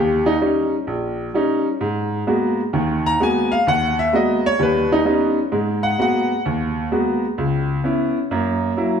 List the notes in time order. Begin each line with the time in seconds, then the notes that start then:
Already playing: D#2 G4
0.26 D#4
0.41 G3 C#4 D#4
0.87 A#1
1.34 G3 C#4 D#4
1.81 G#2
2.27 G#3 A#3 B3 F#4
2.73 D#2 D#3
3.06 A#5
3.20 G#3 A#3 B3 F#4 G#5
3.52 F5
3.67 D#2 F#5
3.99 E5
4.13 G#3 A#3 B3 F#4 D#5
4.46 C#5
4.59 D#2 G3 B4
4.92 D#4
5.05 G3 B3 C#4 D#4
5.52 G#2 G#3
5.83 F#5
5.99 G#3 A#3 B3 F#4 F#5
6.46 D#2
6.92 G#3 A#3 B3 F#4
7.38 C#2
7.84 B3 C#4 E4
8.31 F#2 A#3
8.77 F#3 A#3 E4